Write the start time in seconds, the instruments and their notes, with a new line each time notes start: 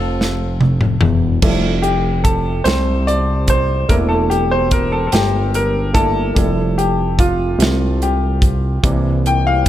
Already playing: analog synth bass F1, horn section C4 F4 A4, grand piano C4 F4 A4
0.21 snare
0.61 high tom
0.81 mid tom
1.01 analog synth bass E1, mid tom
1.42 analog synth bass F1, grand piano G3 A3 E4, kick, crash
1.82 grand piano G4, closed hi-hat
2.24 grand piano A4, kick, closed hi-hat
2.64 analog synth bass C2, grand piano C5, snare, closed hi-hat
3.07 grand piano D5, closed hi-hat
3.48 grand piano C5, kick, closed hi-hat
3.89 analog synth bass E1, grand piano A3 A#3 D4 E4 A#4, kick, closed hi-hat
4.09 grand piano A4
4.30 grand piano G4, closed hi-hat
4.51 grand piano C5
4.71 grand piano A#4, kick, closed hi-hat
4.92 grand piano A4
5.07 grand piano A4
5.12 analog synth bass G1, grand piano G4, snare, closed hi-hat
5.54 grand piano A#4, closed hi-hat
5.93 grand piano A3 A#3 D4 E4 A4, kick, closed hi-hat
6.34 analog synth bass F1, grand piano G3 A3 E4, kick, closed hi-hat
6.78 grand piano G4, closed hi-hat
7.19 grand piano F4, kick, closed hi-hat
7.58 analog synth bass C2, snare, closed hi-hat
8.02 grand piano G4, closed hi-hat
8.42 kick, closed hi-hat
8.83 analog synth bass C2, grand piano E3 A#3 D4, kick, closed hi-hat
9.26 grand piano G5, closed hi-hat
9.47 grand piano F5
9.66 closed hi-hat